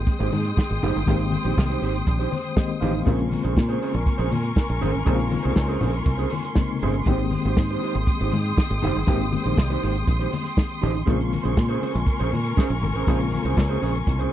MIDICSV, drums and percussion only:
0, 0, Header, 1, 2, 480
1, 0, Start_track
1, 0, Key_signature, -4, "major"
1, 0, Tempo, 500000
1, 1024, Time_signature, 4, 2, 24, 8
1, 13753, End_track
2, 0, Start_track
2, 0, Title_t, "Drums"
2, 66, Note_on_c, 9, 36, 110
2, 71, Note_on_c, 9, 62, 30
2, 73, Note_on_c, 9, 42, 69
2, 162, Note_off_c, 9, 36, 0
2, 167, Note_off_c, 9, 62, 0
2, 169, Note_off_c, 9, 42, 0
2, 201, Note_on_c, 9, 42, 53
2, 297, Note_off_c, 9, 42, 0
2, 308, Note_on_c, 9, 46, 82
2, 312, Note_on_c, 9, 63, 86
2, 404, Note_off_c, 9, 46, 0
2, 408, Note_off_c, 9, 63, 0
2, 429, Note_on_c, 9, 42, 53
2, 525, Note_off_c, 9, 42, 0
2, 550, Note_on_c, 9, 36, 118
2, 562, Note_on_c, 9, 38, 121
2, 646, Note_off_c, 9, 36, 0
2, 658, Note_off_c, 9, 38, 0
2, 674, Note_on_c, 9, 42, 36
2, 770, Note_off_c, 9, 42, 0
2, 793, Note_on_c, 9, 46, 63
2, 796, Note_on_c, 9, 63, 80
2, 796, Note_on_c, 9, 64, 79
2, 889, Note_off_c, 9, 46, 0
2, 892, Note_off_c, 9, 63, 0
2, 892, Note_off_c, 9, 64, 0
2, 919, Note_on_c, 9, 42, 44
2, 1015, Note_off_c, 9, 42, 0
2, 1030, Note_on_c, 9, 36, 108
2, 1030, Note_on_c, 9, 62, 39
2, 1030, Note_on_c, 9, 64, 85
2, 1032, Note_on_c, 9, 42, 82
2, 1126, Note_off_c, 9, 36, 0
2, 1126, Note_off_c, 9, 62, 0
2, 1126, Note_off_c, 9, 64, 0
2, 1128, Note_off_c, 9, 42, 0
2, 1154, Note_on_c, 9, 42, 48
2, 1250, Note_off_c, 9, 42, 0
2, 1270, Note_on_c, 9, 63, 77
2, 1277, Note_on_c, 9, 46, 69
2, 1366, Note_off_c, 9, 63, 0
2, 1373, Note_off_c, 9, 46, 0
2, 1398, Note_on_c, 9, 42, 42
2, 1494, Note_off_c, 9, 42, 0
2, 1512, Note_on_c, 9, 36, 109
2, 1520, Note_on_c, 9, 62, 36
2, 1524, Note_on_c, 9, 38, 122
2, 1608, Note_off_c, 9, 36, 0
2, 1616, Note_off_c, 9, 62, 0
2, 1620, Note_off_c, 9, 38, 0
2, 1636, Note_on_c, 9, 42, 52
2, 1732, Note_off_c, 9, 42, 0
2, 1748, Note_on_c, 9, 62, 46
2, 1757, Note_on_c, 9, 46, 71
2, 1844, Note_off_c, 9, 62, 0
2, 1853, Note_off_c, 9, 46, 0
2, 1880, Note_on_c, 9, 42, 55
2, 1976, Note_off_c, 9, 42, 0
2, 1987, Note_on_c, 9, 36, 111
2, 1995, Note_on_c, 9, 42, 69
2, 2083, Note_off_c, 9, 36, 0
2, 2091, Note_off_c, 9, 42, 0
2, 2125, Note_on_c, 9, 42, 46
2, 2221, Note_off_c, 9, 42, 0
2, 2223, Note_on_c, 9, 46, 78
2, 2233, Note_on_c, 9, 63, 77
2, 2319, Note_off_c, 9, 46, 0
2, 2329, Note_off_c, 9, 63, 0
2, 2342, Note_on_c, 9, 42, 52
2, 2438, Note_off_c, 9, 42, 0
2, 2464, Note_on_c, 9, 36, 111
2, 2465, Note_on_c, 9, 38, 118
2, 2560, Note_off_c, 9, 36, 0
2, 2561, Note_off_c, 9, 38, 0
2, 2584, Note_on_c, 9, 42, 31
2, 2680, Note_off_c, 9, 42, 0
2, 2697, Note_on_c, 9, 46, 64
2, 2710, Note_on_c, 9, 62, 33
2, 2710, Note_on_c, 9, 63, 80
2, 2710, Note_on_c, 9, 64, 75
2, 2793, Note_off_c, 9, 46, 0
2, 2806, Note_off_c, 9, 62, 0
2, 2806, Note_off_c, 9, 63, 0
2, 2806, Note_off_c, 9, 64, 0
2, 2827, Note_on_c, 9, 42, 39
2, 2923, Note_off_c, 9, 42, 0
2, 2945, Note_on_c, 9, 36, 115
2, 2947, Note_on_c, 9, 62, 41
2, 2947, Note_on_c, 9, 64, 92
2, 2949, Note_on_c, 9, 42, 83
2, 3041, Note_off_c, 9, 36, 0
2, 3043, Note_off_c, 9, 62, 0
2, 3043, Note_off_c, 9, 64, 0
2, 3045, Note_off_c, 9, 42, 0
2, 3061, Note_on_c, 9, 42, 44
2, 3157, Note_off_c, 9, 42, 0
2, 3180, Note_on_c, 9, 46, 80
2, 3188, Note_on_c, 9, 62, 39
2, 3188, Note_on_c, 9, 63, 74
2, 3276, Note_off_c, 9, 46, 0
2, 3284, Note_off_c, 9, 62, 0
2, 3284, Note_off_c, 9, 63, 0
2, 3312, Note_on_c, 9, 42, 42
2, 3408, Note_off_c, 9, 42, 0
2, 3424, Note_on_c, 9, 36, 106
2, 3432, Note_on_c, 9, 38, 125
2, 3520, Note_off_c, 9, 36, 0
2, 3528, Note_off_c, 9, 38, 0
2, 3550, Note_on_c, 9, 42, 52
2, 3646, Note_off_c, 9, 42, 0
2, 3668, Note_on_c, 9, 46, 76
2, 3668, Note_on_c, 9, 62, 48
2, 3764, Note_off_c, 9, 46, 0
2, 3764, Note_off_c, 9, 62, 0
2, 3789, Note_on_c, 9, 42, 52
2, 3885, Note_off_c, 9, 42, 0
2, 3900, Note_on_c, 9, 36, 120
2, 3903, Note_on_c, 9, 42, 68
2, 3996, Note_off_c, 9, 36, 0
2, 3999, Note_off_c, 9, 42, 0
2, 4031, Note_on_c, 9, 42, 48
2, 4127, Note_off_c, 9, 42, 0
2, 4138, Note_on_c, 9, 46, 87
2, 4152, Note_on_c, 9, 62, 39
2, 4152, Note_on_c, 9, 63, 84
2, 4234, Note_off_c, 9, 46, 0
2, 4248, Note_off_c, 9, 62, 0
2, 4248, Note_off_c, 9, 63, 0
2, 4260, Note_on_c, 9, 42, 51
2, 4356, Note_off_c, 9, 42, 0
2, 4381, Note_on_c, 9, 36, 123
2, 4385, Note_on_c, 9, 38, 124
2, 4477, Note_off_c, 9, 36, 0
2, 4481, Note_off_c, 9, 38, 0
2, 4495, Note_on_c, 9, 42, 36
2, 4591, Note_off_c, 9, 42, 0
2, 4611, Note_on_c, 9, 46, 60
2, 4634, Note_on_c, 9, 62, 33
2, 4634, Note_on_c, 9, 63, 79
2, 4634, Note_on_c, 9, 64, 69
2, 4707, Note_off_c, 9, 46, 0
2, 4730, Note_off_c, 9, 62, 0
2, 4730, Note_off_c, 9, 63, 0
2, 4730, Note_off_c, 9, 64, 0
2, 4745, Note_on_c, 9, 42, 46
2, 4841, Note_off_c, 9, 42, 0
2, 4857, Note_on_c, 9, 42, 83
2, 4862, Note_on_c, 9, 36, 121
2, 4868, Note_on_c, 9, 62, 41
2, 4868, Note_on_c, 9, 64, 88
2, 4953, Note_off_c, 9, 42, 0
2, 4958, Note_off_c, 9, 36, 0
2, 4964, Note_off_c, 9, 62, 0
2, 4964, Note_off_c, 9, 64, 0
2, 4982, Note_on_c, 9, 42, 49
2, 5078, Note_off_c, 9, 42, 0
2, 5097, Note_on_c, 9, 46, 72
2, 5113, Note_on_c, 9, 62, 32
2, 5113, Note_on_c, 9, 63, 80
2, 5193, Note_off_c, 9, 46, 0
2, 5209, Note_off_c, 9, 62, 0
2, 5209, Note_off_c, 9, 63, 0
2, 5220, Note_on_c, 9, 42, 40
2, 5316, Note_off_c, 9, 42, 0
2, 5337, Note_on_c, 9, 38, 117
2, 5340, Note_on_c, 9, 36, 106
2, 5354, Note_on_c, 9, 62, 36
2, 5433, Note_off_c, 9, 38, 0
2, 5436, Note_off_c, 9, 36, 0
2, 5450, Note_off_c, 9, 62, 0
2, 5455, Note_on_c, 9, 42, 50
2, 5551, Note_off_c, 9, 42, 0
2, 5576, Note_on_c, 9, 46, 68
2, 5576, Note_on_c, 9, 64, 97
2, 5672, Note_off_c, 9, 46, 0
2, 5672, Note_off_c, 9, 64, 0
2, 5697, Note_on_c, 9, 42, 55
2, 5793, Note_off_c, 9, 42, 0
2, 5812, Note_on_c, 9, 42, 72
2, 5817, Note_on_c, 9, 36, 122
2, 5908, Note_off_c, 9, 42, 0
2, 5913, Note_off_c, 9, 36, 0
2, 5935, Note_on_c, 9, 42, 44
2, 6031, Note_off_c, 9, 42, 0
2, 6043, Note_on_c, 9, 46, 90
2, 6075, Note_on_c, 9, 63, 79
2, 6139, Note_off_c, 9, 46, 0
2, 6169, Note_on_c, 9, 42, 52
2, 6171, Note_off_c, 9, 63, 0
2, 6176, Note_on_c, 9, 38, 36
2, 6265, Note_off_c, 9, 42, 0
2, 6272, Note_off_c, 9, 38, 0
2, 6292, Note_on_c, 9, 38, 119
2, 6300, Note_on_c, 9, 36, 120
2, 6313, Note_on_c, 9, 62, 37
2, 6388, Note_off_c, 9, 38, 0
2, 6396, Note_off_c, 9, 36, 0
2, 6409, Note_off_c, 9, 62, 0
2, 6412, Note_on_c, 9, 42, 38
2, 6508, Note_off_c, 9, 42, 0
2, 6522, Note_on_c, 9, 46, 57
2, 6553, Note_on_c, 9, 62, 34
2, 6553, Note_on_c, 9, 63, 68
2, 6553, Note_on_c, 9, 64, 78
2, 6618, Note_off_c, 9, 46, 0
2, 6649, Note_off_c, 9, 62, 0
2, 6649, Note_off_c, 9, 63, 0
2, 6649, Note_off_c, 9, 64, 0
2, 6655, Note_on_c, 9, 42, 40
2, 6751, Note_off_c, 9, 42, 0
2, 6769, Note_on_c, 9, 42, 79
2, 6780, Note_on_c, 9, 36, 103
2, 6788, Note_on_c, 9, 62, 42
2, 6788, Note_on_c, 9, 64, 89
2, 6865, Note_off_c, 9, 42, 0
2, 6876, Note_off_c, 9, 36, 0
2, 6884, Note_off_c, 9, 62, 0
2, 6884, Note_off_c, 9, 64, 0
2, 6892, Note_on_c, 9, 42, 48
2, 6988, Note_off_c, 9, 42, 0
2, 7018, Note_on_c, 9, 62, 37
2, 7018, Note_on_c, 9, 63, 80
2, 7023, Note_on_c, 9, 46, 73
2, 7114, Note_off_c, 9, 62, 0
2, 7114, Note_off_c, 9, 63, 0
2, 7119, Note_off_c, 9, 46, 0
2, 7139, Note_on_c, 9, 42, 42
2, 7235, Note_off_c, 9, 42, 0
2, 7265, Note_on_c, 9, 38, 105
2, 7266, Note_on_c, 9, 36, 114
2, 7361, Note_off_c, 9, 38, 0
2, 7362, Note_off_c, 9, 36, 0
2, 7384, Note_on_c, 9, 42, 48
2, 7480, Note_off_c, 9, 42, 0
2, 7505, Note_on_c, 9, 62, 41
2, 7507, Note_on_c, 9, 46, 78
2, 7601, Note_off_c, 9, 62, 0
2, 7603, Note_off_c, 9, 46, 0
2, 7629, Note_on_c, 9, 42, 59
2, 7725, Note_off_c, 9, 42, 0
2, 7748, Note_on_c, 9, 36, 116
2, 7749, Note_on_c, 9, 62, 31
2, 7755, Note_on_c, 9, 42, 69
2, 7844, Note_off_c, 9, 36, 0
2, 7845, Note_off_c, 9, 62, 0
2, 7851, Note_off_c, 9, 42, 0
2, 7874, Note_on_c, 9, 42, 44
2, 7970, Note_off_c, 9, 42, 0
2, 7986, Note_on_c, 9, 46, 80
2, 7994, Note_on_c, 9, 63, 83
2, 8082, Note_off_c, 9, 46, 0
2, 8090, Note_off_c, 9, 63, 0
2, 8112, Note_on_c, 9, 42, 55
2, 8208, Note_off_c, 9, 42, 0
2, 8228, Note_on_c, 9, 62, 43
2, 8232, Note_on_c, 9, 36, 124
2, 8238, Note_on_c, 9, 38, 122
2, 8324, Note_off_c, 9, 62, 0
2, 8328, Note_off_c, 9, 36, 0
2, 8334, Note_off_c, 9, 38, 0
2, 8355, Note_on_c, 9, 42, 34
2, 8451, Note_off_c, 9, 42, 0
2, 8464, Note_on_c, 9, 46, 61
2, 8473, Note_on_c, 9, 62, 36
2, 8473, Note_on_c, 9, 63, 73
2, 8473, Note_on_c, 9, 64, 78
2, 8560, Note_off_c, 9, 46, 0
2, 8569, Note_off_c, 9, 62, 0
2, 8569, Note_off_c, 9, 63, 0
2, 8569, Note_off_c, 9, 64, 0
2, 8597, Note_on_c, 9, 42, 38
2, 8693, Note_off_c, 9, 42, 0
2, 8705, Note_on_c, 9, 42, 80
2, 8711, Note_on_c, 9, 36, 115
2, 8715, Note_on_c, 9, 64, 87
2, 8801, Note_off_c, 9, 42, 0
2, 8807, Note_off_c, 9, 36, 0
2, 8811, Note_off_c, 9, 64, 0
2, 8826, Note_on_c, 9, 42, 45
2, 8922, Note_off_c, 9, 42, 0
2, 8950, Note_on_c, 9, 46, 64
2, 8951, Note_on_c, 9, 62, 34
2, 8951, Note_on_c, 9, 63, 80
2, 9046, Note_off_c, 9, 46, 0
2, 9047, Note_off_c, 9, 62, 0
2, 9047, Note_off_c, 9, 63, 0
2, 9072, Note_on_c, 9, 42, 43
2, 9168, Note_off_c, 9, 42, 0
2, 9192, Note_on_c, 9, 36, 120
2, 9199, Note_on_c, 9, 38, 120
2, 9288, Note_off_c, 9, 36, 0
2, 9295, Note_off_c, 9, 38, 0
2, 9322, Note_on_c, 9, 42, 51
2, 9418, Note_off_c, 9, 42, 0
2, 9434, Note_on_c, 9, 46, 78
2, 9530, Note_off_c, 9, 46, 0
2, 9555, Note_on_c, 9, 42, 56
2, 9651, Note_off_c, 9, 42, 0
2, 9671, Note_on_c, 9, 36, 118
2, 9679, Note_on_c, 9, 42, 67
2, 9767, Note_off_c, 9, 36, 0
2, 9775, Note_off_c, 9, 42, 0
2, 9804, Note_on_c, 9, 42, 50
2, 9900, Note_off_c, 9, 42, 0
2, 9907, Note_on_c, 9, 46, 87
2, 9922, Note_on_c, 9, 63, 86
2, 10003, Note_off_c, 9, 46, 0
2, 10018, Note_off_c, 9, 63, 0
2, 10023, Note_on_c, 9, 42, 57
2, 10031, Note_on_c, 9, 38, 37
2, 10119, Note_off_c, 9, 42, 0
2, 10127, Note_off_c, 9, 38, 0
2, 10148, Note_on_c, 9, 36, 119
2, 10154, Note_on_c, 9, 38, 113
2, 10161, Note_on_c, 9, 62, 38
2, 10244, Note_off_c, 9, 36, 0
2, 10250, Note_off_c, 9, 38, 0
2, 10257, Note_off_c, 9, 62, 0
2, 10278, Note_on_c, 9, 42, 34
2, 10374, Note_off_c, 9, 42, 0
2, 10381, Note_on_c, 9, 46, 63
2, 10401, Note_on_c, 9, 63, 82
2, 10401, Note_on_c, 9, 64, 72
2, 10477, Note_off_c, 9, 46, 0
2, 10497, Note_off_c, 9, 63, 0
2, 10497, Note_off_c, 9, 64, 0
2, 10516, Note_on_c, 9, 42, 46
2, 10612, Note_off_c, 9, 42, 0
2, 10631, Note_on_c, 9, 36, 112
2, 10632, Note_on_c, 9, 62, 37
2, 10632, Note_on_c, 9, 64, 82
2, 10633, Note_on_c, 9, 42, 72
2, 10727, Note_off_c, 9, 36, 0
2, 10728, Note_off_c, 9, 62, 0
2, 10728, Note_off_c, 9, 64, 0
2, 10729, Note_off_c, 9, 42, 0
2, 10755, Note_on_c, 9, 42, 47
2, 10851, Note_off_c, 9, 42, 0
2, 10874, Note_on_c, 9, 62, 39
2, 10874, Note_on_c, 9, 63, 81
2, 10875, Note_on_c, 9, 46, 73
2, 10970, Note_off_c, 9, 62, 0
2, 10970, Note_off_c, 9, 63, 0
2, 10971, Note_off_c, 9, 46, 0
2, 10990, Note_on_c, 9, 42, 43
2, 11086, Note_off_c, 9, 42, 0
2, 11107, Note_on_c, 9, 36, 114
2, 11111, Note_on_c, 9, 38, 127
2, 11203, Note_off_c, 9, 36, 0
2, 11207, Note_off_c, 9, 38, 0
2, 11237, Note_on_c, 9, 42, 55
2, 11333, Note_off_c, 9, 42, 0
2, 11355, Note_on_c, 9, 46, 71
2, 11356, Note_on_c, 9, 62, 42
2, 11451, Note_off_c, 9, 46, 0
2, 11452, Note_off_c, 9, 62, 0
2, 11471, Note_on_c, 9, 42, 55
2, 11567, Note_off_c, 9, 42, 0
2, 11583, Note_on_c, 9, 36, 111
2, 11588, Note_on_c, 9, 42, 62
2, 11600, Note_on_c, 9, 62, 31
2, 11679, Note_off_c, 9, 36, 0
2, 11684, Note_off_c, 9, 42, 0
2, 11696, Note_off_c, 9, 62, 0
2, 11705, Note_on_c, 9, 42, 50
2, 11801, Note_off_c, 9, 42, 0
2, 11826, Note_on_c, 9, 46, 85
2, 11837, Note_on_c, 9, 63, 75
2, 11922, Note_off_c, 9, 46, 0
2, 11933, Note_off_c, 9, 63, 0
2, 11954, Note_on_c, 9, 42, 55
2, 12050, Note_off_c, 9, 42, 0
2, 12070, Note_on_c, 9, 36, 121
2, 12076, Note_on_c, 9, 62, 38
2, 12083, Note_on_c, 9, 38, 122
2, 12166, Note_off_c, 9, 36, 0
2, 12172, Note_off_c, 9, 62, 0
2, 12179, Note_off_c, 9, 38, 0
2, 12199, Note_on_c, 9, 42, 37
2, 12295, Note_off_c, 9, 42, 0
2, 12314, Note_on_c, 9, 46, 57
2, 12320, Note_on_c, 9, 62, 36
2, 12320, Note_on_c, 9, 63, 75
2, 12320, Note_on_c, 9, 64, 74
2, 12410, Note_off_c, 9, 46, 0
2, 12416, Note_off_c, 9, 62, 0
2, 12416, Note_off_c, 9, 63, 0
2, 12416, Note_off_c, 9, 64, 0
2, 12445, Note_on_c, 9, 42, 44
2, 12541, Note_off_c, 9, 42, 0
2, 12550, Note_on_c, 9, 36, 118
2, 12552, Note_on_c, 9, 42, 70
2, 12552, Note_on_c, 9, 64, 77
2, 12646, Note_off_c, 9, 36, 0
2, 12648, Note_off_c, 9, 42, 0
2, 12648, Note_off_c, 9, 64, 0
2, 12677, Note_on_c, 9, 42, 44
2, 12773, Note_off_c, 9, 42, 0
2, 12788, Note_on_c, 9, 62, 34
2, 12788, Note_on_c, 9, 63, 80
2, 12796, Note_on_c, 9, 46, 67
2, 12884, Note_off_c, 9, 62, 0
2, 12884, Note_off_c, 9, 63, 0
2, 12892, Note_off_c, 9, 46, 0
2, 12915, Note_on_c, 9, 42, 42
2, 13011, Note_off_c, 9, 42, 0
2, 13028, Note_on_c, 9, 36, 114
2, 13036, Note_on_c, 9, 62, 38
2, 13039, Note_on_c, 9, 38, 113
2, 13124, Note_off_c, 9, 36, 0
2, 13132, Note_off_c, 9, 62, 0
2, 13135, Note_off_c, 9, 38, 0
2, 13155, Note_on_c, 9, 42, 50
2, 13251, Note_off_c, 9, 42, 0
2, 13271, Note_on_c, 9, 46, 70
2, 13367, Note_off_c, 9, 46, 0
2, 13396, Note_on_c, 9, 42, 55
2, 13492, Note_off_c, 9, 42, 0
2, 13508, Note_on_c, 9, 36, 118
2, 13519, Note_on_c, 9, 42, 76
2, 13604, Note_off_c, 9, 36, 0
2, 13615, Note_off_c, 9, 42, 0
2, 13640, Note_on_c, 9, 42, 47
2, 13736, Note_off_c, 9, 42, 0
2, 13753, End_track
0, 0, End_of_file